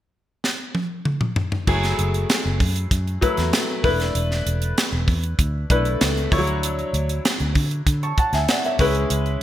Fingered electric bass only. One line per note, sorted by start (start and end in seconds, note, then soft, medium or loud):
1.67 1.93 F#1 loud
1.99 2.24 F#1 medium
2.45 2.58 F#1 medium
2.60 2.85 F#2 medium
2.91 3.16 F#2 loud
3.38 3.50 E2 medium
3.84 4.09 E1 medium
4.15 4.40 E1 loud
4.46 4.71 E1 medium
4.92 5.05 E1 medium
5.08 5.33 E2 medium
5.39 5.64 D2 loud
5.70 5.95 B1 medium
6.01 6.26 C#2 medium
6.32 6.82 D2 medium
6.93 7.19 D2 medium
7.40 7.53 D2 medium
7.55 7.81 D3 medium
7.86 8.12 D3 loud
8.33 8.45 D2 medium
8.79 9.05 C#2 loud
9.10 9.36 C#2 medium